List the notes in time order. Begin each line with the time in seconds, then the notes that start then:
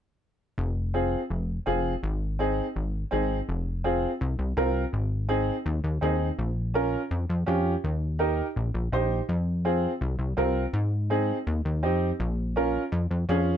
0.58 F1
0.94 C4 F4 G#4
1.30 F1
1.66 F1 C4 F4 G#4
2.03 G#1
2.39 C4 D#4 G#4
2.76 G#1
3.11 G#1 C4 D#4 G#4
3.49 F1
3.84 C4 F4 G#4
4.21 C2
4.39 C2
4.57 C2 C4 F4 A#4
4.93 G#1
5.29 C4 D#4 G#4
5.66 D#2
5.84 D#2
6.01 D#2 C4 D#4 G#4
6.39 A#1
6.74 C#4 F4 A#4
7.11 F2
7.30 F2
7.46 F2 C#4 F4 G4
7.84 D#2
8.19 D#4 G4 A#4
8.56 A#1
8.74 A#1
8.92 A#1 D#4 G4 C5
9.29 F2
9.65 C4 F4 G#4
10.01 C2
10.19 C2
10.37 C2 C4 F4 A#4
10.73 G#2
11.10 C4 D#4 G#4
11.47 D#2
11.65 D#2
11.83 F2 C4 D#4 G4
12.20 A#1
12.56 C#4 F4 A#4
12.92 F2
13.11 F2
13.29 F2 C#4 F4 G#4